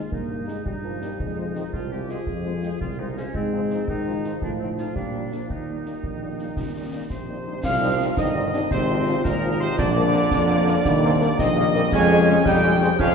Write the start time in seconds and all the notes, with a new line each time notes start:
0.11 G2 A#3 D#4, concert bass drum
0.30 A#3 D#4 D#5
0.47 G#3 A#3 D#4 D#5, snare
0.65 G2 G3 D#4, concert bass drum
0.83 F3 A#3 D#4 D#5
1.01 G3 A#3 D#4 D#5, snare
1.19 F2 G#3, concert bass drum
1.38 G#3 C4 F4 C5
1.55 D#3 G#3 C4 F4 C5, snare
1.73 C2 F3 F4, concert bass drum
1.91 G#3 C4 F4 G4 C5
2.09 G#3 C4 F4 G#4 C5, snare
2.26 F2, concert bass drum
2.45 G#3 C4 F4 C5
2.63 G#3 C4 F4 C5, snare
2.80 C2 F4, concert bass drum
2.99 G#3 C4 D#4 F4 C5
3.17 G#3 C4 C#4 F4 C5, snare
3.34 G#2 G#3 C4, concert bass drum
3.53 F3 C4 D#4 C5
3.71 F3 C4 D#4 C5, snare
3.88 G#2 D#3 D#4, concert bass drum
4.07 F3 C4 D#4 C5
4.24 F3 C4 D#4 C5, snare
4.41 A2 F3 D4, concert bass drum
4.60 F3 C4 D#4 C5
4.78 F3 C4 D#4 F4 C5, snare
4.95 A#2 G3 D4, concert bass drum
5.14 F3 A#3 D4 G#4
5.31 F3 A#3 D4 G#4, snare
5.48 D#2 D#3 D#4, concert bass drum
5.69 G3 A#3 D#4 G4
5.86 G3 A#3 D#4 G4, snare
6.03 A#1, concert bass drum
6.22 G3 A#3 D#4 G4
6.39 G3 A#3 D#4 G4, snare
6.57 D#2, concert bass drum, snare
6.75 G3 A#3 D#4 G4
6.93 G3 A#3 D#4 G4
7.10 A#1 C3 C5 C6, concert bass drum, snare
7.29 G3 A#3 D#4 G4
7.46 G3 A#3 D#4 G4
7.63 C2 F3 C4 F5 F6, concert bass drum, snare, crash
7.82 G3 C4 D#4
7.99 G3 C4 D#4, snare
8.17 G1 D#3 D#4 D#5 D#6, concert bass drum, snare
8.35 G3 C4 D#4
8.52 G3 C4 D4 D#4, snare
8.71 G#1 C3 C4 C5 C6, concert bass drum, snare
8.89 F3 C4 F4
9.07 F3 C4 F4, snare
9.24 G#1 A#2 D#4 A#4 A#5, concert bass drum, snare
9.42 F3 C4 F4
9.60 C3 F3 C4 F4 C5 C6, snare
9.78 A#1 D3 D4 D5 D6, concert bass drum, snare, crash
9.95 F3 A#3 A#4
10.13 F3 A#3 A#4, snare
10.31 F2 A#3, concert bass drum, snare
10.49 F3 A#3 A#4
10.67 F3 A#3 A#4, snare
10.85 D#2 G3, concert bass drum, snare
11.03 G3 A#3 C4 A#4
11.20 G3 A#3 A#4, snare
11.38 A#1 D#3 C4 D#5 D#6, concert bass drum, snare
11.56 G3 A#3 A#4
11.74 G3 A#3 C4 A#4, snare
11.92 F2 G#3 C#4 G#5 G#6, concert bass drum, snare, crash
12.10 G#3 C#4 G#4
12.28 G#3 C#4 G#4, snare
12.45 F2 G3 D#4 G5 G6, concert bass drum, snare
12.63 G#3 C#4 G#4
12.81 G#3 C4 C#4 G#4, snare
12.99 F2 F3 C#4 F5 F6, concert bass drum, snare